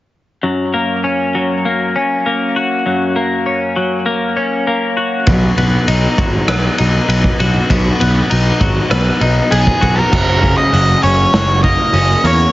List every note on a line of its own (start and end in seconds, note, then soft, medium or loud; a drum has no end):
0.43 1.94 F#2 medium
0.74 1.64 A#3 medium
1.04 1.95 C#4 medium
1.35 3.76 F#3 medium
1.65 2.25 A#3 medium
1.96 3.45 C#4 medium
2.26 3.15 A#3 medium
2.56 4.96 F#4 medium
2.86 4.37 F#2 medium
3.16 4.05 A#3 medium
3.46 4.35 C#4 medium
3.76 6.18 F#3 medium
4.06 4.66 A#3 medium
4.37 5.27 C#4 medium
4.67 5.27 A#3 medium
4.97 7.39 F#4 medium
5.27 5.46 B1 medium
5.27 6.79 B2 medium
5.27 kick loud
5.27 ride medium
5.58 5.76 B1 medium
5.58 6.47 B3 medium
5.58 ride medium
5.88 6.06 B1 medium
5.88 6.77 D#4 medium
5.88 ride medium
6.18 6.37 G#1 medium
6.18 8.60 F#3 medium
6.18 kick medium
6.18 ride medium
6.48 6.67 B1 medium
6.48 7.07 B3 medium
6.48 cross-stick loud
6.48 ride medium
6.78 6.98 B1 medium
6.78 8.29 D#4 medium
6.78 ride medium
7.08 7.27 B1 medium
7.08 7.99 B3 medium
7.08 ride medium
7.24 kick medium
7.40 7.58 B1 medium
7.40 8.91 F#4 medium
7.40 ride medium
7.70 7.89 B1 medium
7.70 9.21 B2 medium
7.70 kick loud
7.70 ride medium
8.00 8.20 B1 medium
8.00 8.89 B3 medium
8.00 ride medium
8.30 8.50 B1 medium
8.30 9.20 D#4 medium
8.30 ride medium
8.60 8.79 G#1 medium
8.60 10.12 F#3 medium
8.60 kick medium
8.60 ride medium
8.90 9.09 B1 medium
8.90 9.50 B3 medium
8.90 cross-stick loud
8.90 ride medium
9.21 9.40 B1 medium
9.21 10.12 D#4 medium
9.21 ride medium
9.51 9.70 B1 medium
9.51 10.12 B3 medium
9.51 9.98 G#4 medium
9.51 ride medium
9.67 kick medium
9.81 10.01 B1 medium
9.81 10.11 F#4 medium
9.81 kick medium
9.81 ride medium
9.95 10.57 A#4 medium
10.11 10.55 F#1 medium
10.11 11.63 F#2 medium
10.11 kick loud
10.11 crash medium
10.42 11.93 C#3 medium
10.42 kick medium
10.42 open hi-hat soft
10.58 11.03 D#5 loud
10.73 10.94 F#1 medium
10.73 11.33 F#3 medium
10.73 open hi-hat medium
11.03 11.24 F#1 medium
11.03 11.92 C#4 medium
11.03 11.63 C#5 loud
11.03 open hi-hat soft
11.33 11.76 F#1 medium
11.33 12.52 F#3 medium
11.33 snare medium
11.33 open hi-hat medium
11.63 12.23 A#3 medium
11.63 12.25 D#5 medium
11.63 kick medium
11.63 open hi-hat soft
11.93 12.15 F#1 medium
11.93 12.52 C#4 medium
11.93 open hi-hat medium
12.24 12.45 E2 medium
12.24 12.52 A#3 medium
12.24 12.52 C#5 medium
12.24 open hi-hat medium